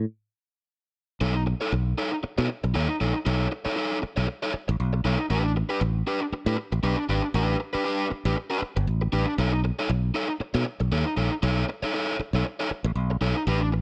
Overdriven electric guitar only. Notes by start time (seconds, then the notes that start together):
1.21 D#4 A4 C#5
1.35 muted overdriven electric guitar stroke
1.46 muted overdriven electric guitar stroke
1.61 D#4 A4 C#5
1.73 muted overdriven electric guitar stroke
1.98 D#4 A4 C#5
2.12 muted overdriven electric guitar stroke
2.23 muted overdriven electric guitar stroke
2.38 D#4 A4 C#5
2.49 muted overdriven electric guitar stroke
2.64 muted overdriven electric guitar stroke
2.74 D#4 A4 C#5
2.89 muted overdriven electric guitar stroke
3.00 D#4 A4 C#5
3.14 muted overdriven electric guitar stroke
3.25 D#4 A4 C#5
3.52 muted overdriven electric guitar stroke
3.65 D#4 A4 C#5
3.76 D#4 A4 C#5
4.02 muted overdriven electric guitar stroke
4.16 D#4 A4 C#5
4.28 muted overdriven electric guitar stroke
4.43 D#4 A4 C#5
4.54 muted overdriven electric guitar stroke
4.68 muted overdriven electric guitar stroke
4.93 muted overdriven electric guitar stroke
5.05 D#4 A4 C#5
5.19 muted overdriven electric guitar stroke
5.30 D4 G4 B4
5.44 muted overdriven electric guitar stroke
5.56 muted overdriven electric guitar stroke
5.69 D4 G4 B4
5.81 muted overdriven electric guitar stroke
6.07 D4 G4 B4
6.21 muted overdriven electric guitar stroke
6.33 muted overdriven electric guitar stroke
6.47 D4 G4 B4
6.57 muted overdriven electric guitar stroke
6.72 muted overdriven electric guitar stroke
6.83 D4 G4 B4
6.98 muted overdriven electric guitar stroke
7.09 D4 G4 B4
7.23 muted overdriven electric guitar stroke
7.35 D4 G4 B4
7.60 muted overdriven electric guitar stroke
7.73 D4 G4 B4
7.85 D4 G4 B4
8.10 muted overdriven electric guitar stroke
8.26 D4 G4 B4
8.37 muted overdriven electric guitar stroke
8.50 D4 G4 B4
8.62 muted overdriven electric guitar stroke
8.76 muted overdriven electric guitar stroke
9.01 muted overdriven electric guitar stroke
9.12 D4 G4 B4
9.27 muted overdriven electric guitar stroke
9.39 D#4 A4 C#5
9.53 muted overdriven electric guitar stroke
9.64 muted overdriven electric guitar stroke
9.79 D#4 A4 C#5
9.90 muted overdriven electric guitar stroke
10.14 D#4 A4 C#5
10.29 muted overdriven electric guitar stroke
10.40 muted overdriven electric guitar stroke
10.54 D#4 A4 C#5
10.66 muted overdriven electric guitar stroke
10.80 muted overdriven electric guitar stroke
10.92 D#4 A4 C#5
11.06 muted overdriven electric guitar stroke
11.16 D#4 A4 C#5
11.32 muted overdriven electric guitar stroke
11.43 D#4 A4 C#5
11.69 muted overdriven electric guitar stroke
11.83 D#4 A4 C#5
11.94 D#4 A4 C#5
12.20 muted overdriven electric guitar stroke
12.34 D#4 A4 C#5
12.46 muted overdriven electric guitar stroke
12.60 D#4 A4 C#5
12.71 muted overdriven electric guitar stroke
12.85 muted overdriven electric guitar stroke
13.10 muted overdriven electric guitar stroke
13.21 D#4 A4 C#5
13.37 muted overdriven electric guitar stroke
13.47 D4 G4 B4
13.61 muted overdriven electric guitar stroke
13.72 muted overdriven electric guitar stroke